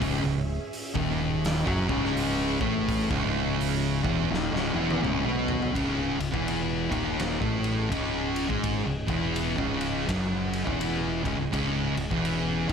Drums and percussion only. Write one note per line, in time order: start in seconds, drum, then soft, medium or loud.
0.02 kick loud
0.02 open hi-hat medium
0.73 open hi-hat medium
0.95 kick loud
1.45 snare loud
1.45 open hi-hat medium
1.67 kick loud
1.89 kick loud
2.05 snare soft
2.17 open hi-hat medium
2.61 kick loud
2.89 kick loud
2.89 open hi-hat medium
3.11 kick loud
3.61 open hi-hat medium
4.05 kick loud
4.34 snare medium
4.56 snare medium
4.90 high tom medium
5.04 mid tom loud
5.48 floor tom loud
5.62 floor tom loud
5.75 kick loud
5.75 ride medium
6.20 ride medium
6.34 kick loud
6.48 ride medium
6.92 kick loud
6.92 ride medium
7.20 snare loud
7.20 ride medium
7.42 kick loud
7.64 ride medium
7.92 kick loud
7.92 ride medium
8.36 ride medium
8.50 kick loud
8.64 kick loud
8.64 ride medium
9.08 kick loud
9.08 ride medium
9.36 ride loud
9.58 kick loud
9.81 ride medium
10.09 kick loud
10.09 snare loud
10.09 ride medium
10.53 ride medium
10.67 kick loud
10.81 ride loud
11.25 kick loud
11.25 ride medium
11.53 kick loud
11.53 ride medium
11.97 ride medium
12.11 kick loud
12.25 ride medium
12.69 kick loud
12.69 ride medium